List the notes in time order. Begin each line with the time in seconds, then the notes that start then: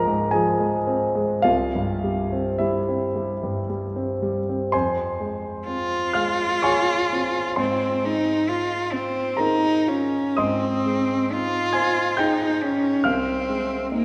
Already playing: C#2 G#2 F3 G#3 C4 F4 A#4 F5 A#5
0.07 G#2
0.31 F3 G#4 G#5
0.60 G#3
0.87 C4
1.15 G#3
1.42 C2 F4 F5
1.75 G2
2.04 G3
2.32 C4
2.58 G3 E4 E5
2.89 C4
3.16 G3
3.43 G2
3.70 G3
3.96 C4
4.22 G3
4.49 C4
4.72 F2 C5 G#5 C6
5.20 G#3
5.67 C4 F4
6.13 G#3 F5 F6
6.63 G#4 C#5 G#5 C#6
7.12 C4
7.56 G#2 C4 C5 G#5 C6
8.03 G#3 D#4
8.49 F4
8.93 C4
9.37 D#4 G#4 A#4 A#5
9.87 C#4 F4
10.37 G#2 C4 D#5 C6 D#6
10.86 G#3
11.31 D#4 F4
11.73 C5 G#5 G#6
12.17 D#4 G#4 G5 G6
12.62 C#4 D#4
13.04 C2 C4 F5 F6
13.49 G#3
13.92 A#3 D#4